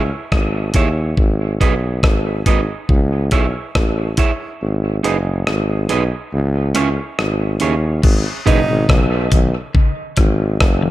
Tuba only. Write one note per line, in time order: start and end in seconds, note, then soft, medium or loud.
0.32 0.71 G#1 medium
0.75 1.14 D#2 medium
1.18 1.57 G#1 medium
1.61 2.00 B1 medium
2.04 2.42 G#1 medium
2.46 2.67 G#1 medium
2.89 3.28 C#2 loud
3.33 3.53 B1 medium
3.76 4.14 A1 medium
4.61 5.00 G#1 medium
5.04 5.43 F#1 medium
5.47 5.86 G#1 medium
5.90 6.10 B1 medium
6.33 6.72 C#2 loud
6.76 6.96 C#2 medium
7.19 7.58 G#1 medium
7.62 8.00 D#2 medium
8.04 8.24 G#1 loud
8.47 8.67 F#1 medium
8.70 8.88 G#1 loud
8.89 9.28 B1 medium
9.32 9.53 B1 medium
10.18 10.57 G#1 medium
10.61 10.91 F#1 medium